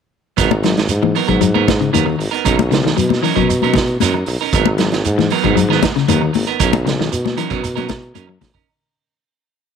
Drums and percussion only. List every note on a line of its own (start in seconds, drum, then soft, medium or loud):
0.38 kick medium
0.38 snare soft
0.38 closed hi-hat medium
0.38 high conga soft
0.38 shekere medium
0.51 high conga medium
0.63 snare medium
0.63 closed hi-hat soft
0.63 shekere soft
0.77 snare medium
0.77 closed hi-hat soft
0.88 closed hi-hat medium
0.88 high conga soft
0.88 shekere medium
1.03 high conga medium
1.15 open hi-hat medium
1.15 shekere soft
1.28 kick medium
1.28 closed hi-hat soft
1.41 closed hi-hat medium
1.41 high conga soft
1.41 shekere medium
1.55 high conga medium
1.68 kick medium
1.68 snare medium
1.68 closed hi-hat soft
1.68 high conga medium
1.68 shekere soft
1.82 closed hi-hat soft
1.94 closed hi-hat medium
1.94 high conga medium
1.94 shekere medium
2.20 open hi-hat medium
2.20 shekere soft
2.34 closed hi-hat soft
2.45 kick medium
2.45 closed hi-hat medium
2.45 high conga soft
2.45 shekere medium
2.59 closed hi-hat soft
2.59 high conga medium
2.71 snare medium
2.71 closed hi-hat soft
2.71 shekere soft
2.87 snare medium
2.98 closed hi-hat medium
2.98 high conga soft
2.98 shekere medium
3.10 snare soft
3.10 high conga medium
3.24 open hi-hat medium
3.24 shekere soft
3.37 kick medium
3.37 closed hi-hat soft
3.50 closed hi-hat medium
3.50 high conga soft
3.50 shekere medium
3.62 closed hi-hat soft
3.62 high conga medium
3.74 kick medium
3.74 snare medium
3.74 closed hi-hat soft
3.74 high conga medium
3.74 shekere soft
3.88 closed hi-hat soft
4.00 snare soft
4.00 closed hi-hat medium
4.00 high conga medium
4.00 shekere medium
4.26 open hi-hat medium
4.26 shekere soft
4.53 kick medium
4.53 closed hi-hat medium
4.53 high conga soft
4.53 shekere medium
4.66 high conga medium
4.78 snare medium
4.78 closed hi-hat soft
4.78 shekere soft
4.92 snare medium
4.92 closed hi-hat soft
5.05 closed hi-hat medium
5.05 high conga soft
5.05 shekere medium
5.19 snare soft
5.19 high conga medium
5.30 open hi-hat medium
5.30 shekere soft
5.44 kick medium
5.44 closed hi-hat soft
5.57 closed hi-hat medium
5.57 high conga soft
5.57 shekere medium
5.71 snare soft
5.83 kick medium
5.83 snare medium
5.83 closed hi-hat medium
5.83 high conga medium
5.83 shekere soft
5.96 snare soft
5.96 closed hi-hat soft
6.08 closed hi-hat medium
6.08 high conga medium
6.08 shekere medium
6.34 open hi-hat medium
6.34 high conga medium
6.34 shekere soft
6.47 closed hi-hat soft
6.60 kick medium
6.60 closed hi-hat medium
6.60 high conga soft
6.60 shekere medium
6.73 closed hi-hat soft
6.73 high conga medium
6.87 snare medium
6.87 closed hi-hat soft
6.87 shekere soft
7.01 snare medium
7.12 closed hi-hat medium
7.12 high conga soft
7.12 shekere medium
7.26 snare soft
7.26 high conga medium
7.37 closed hi-hat soft
7.37 shekere soft
7.50 kick medium
7.50 closed hi-hat soft
7.64 closed hi-hat medium
7.64 high conga soft
7.64 shekere medium
7.77 closed hi-hat soft
7.77 high conga medium
7.89 kick medium
7.89 snare medium
7.89 closed hi-hat soft
7.89 high conga medium
7.89 shekere soft
8.02 closed hi-hat soft
8.15 closed hi-hat medium
8.15 high conga medium
8.15 shekere medium
8.41 kick medium
8.41 snare soft
8.41 open hi-hat medium
8.41 high conga medium
8.41 shekere soft
8.55 kick medium